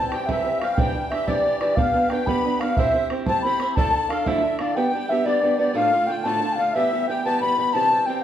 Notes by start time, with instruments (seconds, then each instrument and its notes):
Already playing: steel-string acoustic guitar E3 G3 C4, accordion A5
0.00 steel-string acoustic guitar G4
0.08 steel-string acoustic guitar E3, flute G5, bodhran
0.13 steel-string acoustic guitar G3 C4 G4, accordion G5
0.26 steel-string acoustic guitar C3 E3 G3 C4 G4, flute E5, bodhran
0.31 accordion E5
0.44 steel-string acoustic guitar E3 G3 C4 G4
0.59 steel-string acoustic guitar E3 G3, flute F5, bodhran
0.63 steel-string acoustic guitar C4 G4, accordion F5
0.75 steel-string acoustic guitar C3 E3 G3, flute G5, bodhran
0.79 steel-string acoustic guitar D4 G4, accordion G5
0.87 bodhran
0.94 steel-string acoustic guitar E3 G3 D4 G4
1.10 steel-string acoustic guitar E3 G3 D4 G4, flute E5, accordion E5, bodhran
1.27 steel-string acoustic guitar C3 E3 G3 D4 G4, accordion D5, flute D5, bodhran
1.45 steel-string acoustic guitar E3 G3 D4 G4
1.59 steel-string acoustic guitar E3 G3 D4, flute D5, bodhran
1.63 steel-string acoustic guitar G4
1.76 steel-string acoustic guitar B3 D4 G4 B4, flute F5, accordion F5, bodhran
1.86 bodhran
1.94 steel-string acoustic guitar B3 D4 G4 B4
2.09 steel-string acoustic guitar B3 D4 G4 B4, flute G5, accordion G5, bodhran
2.27 steel-string acoustic guitar B3 D4 G4 B4, flute B5, accordion B5, bodhran
2.45 steel-string acoustic guitar B3 D4 G4 B4
2.60 steel-string acoustic guitar B3 D4 G4, flute F5, accordion F5, bodhran
2.64 steel-string acoustic guitar B4
2.76 steel-string acoustic guitar C4 E4 G4 C5, accordion E5, flute E5, bodhran
2.93 steel-string acoustic guitar C4 E4 G4 C5
3.10 steel-string acoustic guitar C4 E4 G4 C5, bodhran
3.26 steel-string acoustic guitar C4 E4 G4 C5, flute A5, accordion A5, bodhran
3.42 steel-string acoustic guitar C4 E4 G4 C5, flute B5, accordion B5
3.60 steel-string acoustic guitar C4 E4 G4 C5, bodhran
3.71 flute B5
3.76 steel-string acoustic guitar D2 D3 F3 D4 E4 A4, flute A5, accordion A5, bodhran
3.93 steel-string acoustic guitar D3 D4 E4 A4
4.09 steel-string acoustic guitar D3 D4 E4 A4, flute F5, accordion F5, bodhran
4.25 steel-string acoustic guitar D2 D3 F3 D4 E4 A4, flute E5, accordion E5, bodhran
4.42 steel-string acoustic guitar D3 D4 E4 A4
4.59 steel-string acoustic guitar D3 D4 E4 A4, accordion D5, flute F5, bodhran
4.76 steel-string acoustic guitar G3 B3 D4 G4, accordion G5, flute G5
4.88 accordion G5
4.93 steel-string acoustic guitar G3 B3 D4 G4
4.99 accordion G5
5.09 steel-string acoustic guitar G3 B3 D4 G4, accordion E5, flute E5
5.25 steel-string acoustic guitar G3 B3 D4 G4, flute D5, accordion D5
5.42 steel-string acoustic guitar G3 B3 D4 G4
5.58 steel-string acoustic guitar G3 B3 D4 G4, flute D5, accordion D5
5.74 steel-string acoustic guitar D2 A2 D3 A3 D4 F4, flute F5, accordion F5
5.91 steel-string acoustic guitar D3 A3 D4 F4
6.07 steel-string acoustic guitar D3 A3 D4 F4, flute G5, accordion G5
6.24 steel-string acoustic guitar D2 A2 D3 A3 D4 F4, flute A5, accordion A5
6.41 steel-string acoustic guitar D3 A3 D4 F4
6.53 flute F5 G5
6.58 steel-string acoustic guitar D3 A3 D4 F4, accordion F5
6.72 steel-string acoustic guitar E3 G3, flute E5, accordion E5
6.76 steel-string acoustic guitar B3 G4
6.92 steel-string acoustic guitar E3 G3 B3 G4
7.08 steel-string acoustic guitar E3 G3 B3 G4, flute G5, accordion G5
7.25 steel-string acoustic guitar E3 G3 B3 G4, flute A5, accordion A5
7.41 steel-string acoustic guitar E3 G3 B3 G4, flute B5, accordion B5
7.57 steel-string acoustic guitar E3 G3 B3 G4, accordion B5
7.73 steel-string acoustic guitar C3 E3 G3 C4 G4, flute A5, accordion A5
7.91 steel-string acoustic guitar E3 G3 C4 G4
8.06 steel-string acoustic guitar E3 G3 C4 G4, flute G5, accordion G5